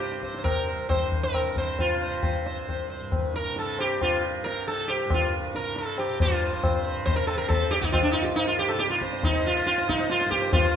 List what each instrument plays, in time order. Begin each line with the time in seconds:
Already playing: tanpura C2 G2 C3, sitar G4
0.00 sitar C5, tabla te
0.12 tabla te
0.23 sitar C5, tabla ke
0.34 tanpura C2, tabla te
0.38 sitar C5
0.44 sitar A#4, tabla na, tabla ge
0.68 sitar C5
0.88 tanpura G2, sitar C5, tabla na, tabla ge
1.12 tabla ge
1.23 sitar A#4
1.34 tabla na, tabla ge
1.41 tanpura C3
1.56 sitar C5, tabla ge
1.79 sitar F4, tabla tin, tabla ge
1.95 tanpura C3
2.02 sitar C5
2.23 sitar C5, tabla na, tabla ge
2.46 tanpura C2, sitar C5, tabla te
2.69 sitar C5, tabla tin, tabla ge
2.90 sitar C5
3.00 tanpura G2
3.12 tabla na, tabla ge
3.34 sitar A#4, tabla te
3.51 tanpura C3
3.56 sitar A4, tabla te
3.79 sitar G4, tabla na
4.01 tanpura C3, sitar F4, tabla na, tabla ge
4.44 sitar A#4, tabla te
4.53 tanpura C2
4.68 sitar A4, tabla te
4.88 sitar G4, tabla na
5.05 tanpura G2
5.10 sitar F4, tabla na, tabla ge
5.55 tanpura C3, sitar A#4, tabla te
5.76 sitar A4, tabla te
5.98 sitar G4, tabla na
6.09 tanpura C3
6.20 tanpura G2, sitar F4 C5, tabla tin, tabla ge
6.32 sitar C5
6.42 sitar C5
6.53 sitar C5
6.63 sitar C5, tabla na, tabla ge
6.71 tanpura C3
6.75 sitar C5
6.85 sitar C5
7.06 sitar C5, tabla tin, tabla ge
7.16 sitar A#4
7.20 tanpura C3
7.27 sitar A4, tabla na
7.38 sitar A#4
7.48 sitar A4, tabla na, tabla ge
7.60 sitar C5
7.71 tanpura C2, sitar G4, tabla te
7.81 sitar D#4, tabla ge
7.92 sitar F4, tabla na, tabla ge
8.03 sitar D4
8.12 sitar D#4 F4
8.21 tanpura G2, sitar F4 G4
8.36 sitar D#4, tabla tin
8.47 sitar F4
8.59 sitar G4, tabla na
8.68 sitar A4
8.74 tanpura C3
8.79 sitar G4, tabla te
8.90 sitar F4, tabla te
9.01 sitar C5, tabla ke
9.12 sitar C5, tabla te
9.21 tanpura C3, sitar D#4, tabla na, tabla ge
9.34 sitar C5
9.46 sitar F4
9.56 sitar C5
9.67 sitar F4, tabla te
9.72 tanpura C2
9.78 sitar C5, tabla te
9.89 sitar D#4, tabla ke
9.99 sitar C5, tabla te
10.10 sitar F4, tabla te
10.19 sitar C5, tabla te
10.25 tanpura G2
10.31 sitar G4, tabla ke
10.41 sitar C5, tabla te
10.53 sitar F4, tabla tin, tabla ge
10.63 sitar C5
10.73 tanpura C3